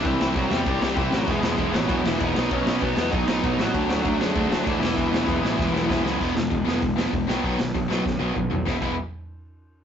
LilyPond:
<<
  \new Staff \with { instrumentName = "Lead electric guitar" } { \time 4/4 \key e \major \tempo 4 = 195 <e e'>4 <fis fis'>8 <g g'>4. <e e'>8 <fis fis'>8 | <gis gis'>4. <fis fis'>4 <e e'>8 <dis' dis''>4 | <cis' cis''>4 <b b'>4 <dis' dis''>4 <dis' dis''>8 <fis fis'>8~ | <fis fis'>4. <gis gis'>4 <fis fis'>8 <e e'>8 <e e'>8~ |
<e e'>2.~ <e e'>8 r8 | r1 | r1 | r1 | }
  \new Staff \with { instrumentName = "Distorted electric guitar" } { \time 4/4 \key e \major r1 | <e gis b e' gis'>8 <e gis b e' gis'>8 <e gis b e' gis'>8 <e gis b e' gis'>8 <e gis b e' gis'>8 <e gis b e' gis'>8 <e gis b e' gis'>8 <b, fis b dis'>8 | <b, fis b dis'>8 <b, fis b dis'>8 <b, fis b dis'>8 <b, fis b dis'>8 <b, fis b dis'>8 <b, fis b dis'>8 <b, fis b dis'>8 <b, fis b dis'>8 | <d fis a d'>8 <d fis a d'>8 <d fis a d'>8 <d fis a d'>8 <d fis a d'>8 <d fis a d'>8 <d fis a d'>8 <e gis b e'>8 |
<e gis b e'>8 <e gis b e'>8 <e gis b e'>8 <e gis b e'>8 <e gis b e'>8 <e gis b e'>8 <e gis b e'>8 <e gis b e'>8 | r1 | r1 | r1 | }
  \new Staff \with { instrumentName = "Distorted electric guitar" } { \clef bass \time 4/4 \key e \major <c g c' e'>8 <c g c' e'>8 <c g c' e'>8 <c g c' e'>8 <c g c' e'>8 <c g c' e'>8 <c g c' e'>8 <c g c' e'>8 | <e gis b e'>8 <e gis b e'>8 <e gis b e'>8 <e gis b e'>8 <e gis b e'>8 <e gis b e'>8 <e gis b e'>8 <b, fis b dis'>8 | <b, fis b dis'>8 <b, fis b dis'>8 <b, fis b dis'>8 <b, fis b dis'>8 <b, fis b dis'>8 <b, fis b dis'>8 <b, fis b dis'>8 <b, fis b dis'>8 | <d fis a d'>8 <d fis a d'>8 <d fis a d'>8 <d fis a d'>8 <d fis a d'>8 <d fis a d'>8 <d fis a d'>8 <e gis b e'>8 |
<e gis b e'>8 <e gis b e'>8 <e gis b e'>8 <e gis b e'>8 <e gis b e'>8 <e gis b e'>8 <e gis b e'>8 <e gis b e'>8 | <e gis b>8 <e gis>8 <e gis>8 <e gis b>8 <e gis>8 <e gis b>8 <e gis>8 <b, dis fis>8 | <b, dis fis>8 <b, dis>8 <b, dis>8 <b, dis fis>8 <b, dis>8 <b, dis fis>8 <b, dis>8 <b, dis>8 | <e gis b e'>8 <e gis b e'>8 r2. | }
  \new Staff \with { instrumentName = "Overdriven electric guitar" } { \clef bass \time 4/4 \key e \major <c g c'>8 <c g c'>8 <c g c'>8 <c g c'>8 <c g c'>8 <c g c'>8 <c g c'>8 <c g c'>8 | <e, b, e>8 <e, b, e>8 <e, b, e>8 <e, b, e>8 <e, b, e>8 <e, b, e>8 <e, b, e>8 <b, fis b>8 | <b, fis b>8 <b, fis b>8 <b, fis b>8 <b, fis b>8 <b, fis b>8 <b, fis b>8 <b, fis b>8 <b, fis b>8 | <d a d'>8 <d a d'>8 <d a d'>8 <d a d'>8 <d a d'>8 <d a d'>8 <d a d'>8 <e, b, e>8 |
<e, b, e>8 <e, b, e>8 <e, b, e>8 <e, b, e>8 <e, b, e>8 <e, b, e>8 <e, b, e>8 <e, b, e>8 | <e, b, e>8 <e, b,>8 <e, b,>8 <e, b, e>8 <e, b,>8 <e, b, e>8 <e, b,>8 <b, fis b>8 | <b, fis b>8 <b, fis>8 <b, fis>8 <b, fis b>8 <b, fis>8 <b, fis b>8 <b, fis>8 <b, fis>8 | <e, b, e>8 <e, b, e>8 r2. | }
  \new Staff \with { instrumentName = "Picked electric bass" } { \clef bass \time 4/4 \key e \major c,8 c,8 c,8 e,8 c,8 c,8 c,8 a,,8 | e,,8 e,,8 e,,8 a,,8 e,,8 e,,8 e,,8 b,,8 | b,,8 b,,8 b,,8 e,8 b,,8 b,,8 b,,8 a,,8 | d,8 d,8 d,8 fis,8 d,8 d,8 d,8 e,,8 |
e,,8 e,,8 e,,8 a,,8 e,,8 e,,8 e,,8 cis,8 | e,,8 e,,8 e,,8 e,,8 e,,4 e,,8 b,,8 | b,,8 b,,8 b,,8 b,,8 fis,8 b,,8 b,,8 b,,8 | e,,8 e,,8 r2. | }
  \new DrumStaff \with { instrumentName = "Drums" } \drummode { \time 4/4 <bd cymr>8 sn8 <bd cymr>8 sn8 <bd cymr>8 sn8 <bd cymr>8 sn8 | <cymc bd>8 sn8 <bd cymr>8 sn8 <bd cymr>8 sn8 <bd cymr>8 sn8 | <bd cymr>8 sn8 <bd cymr>8 sn8 <bd cymr>8 sn8 <bd cymr>8 sn8 | <bd cymr>8 sn8 <bd cymr>8 sn8 <bd cymr>8 sn8 <bd cymr>8 sn8 |
<bd cymr>8 sn8 <bd cymr>8 sn8 <bd sn>8 sn8 <bd sn>8 sn8 | <cymc bd>8 sn8 <hho bd>8 sn8 <hho bd>8 sn8 <hho bd>8 sn8 | <hho bd>8 sn8 <hho bd>8 sn8 <bd sn>4 <bd toml>8 tomfh8 | <bd sn>8 <cymc bd>8 r4 r4 r4 | }
>>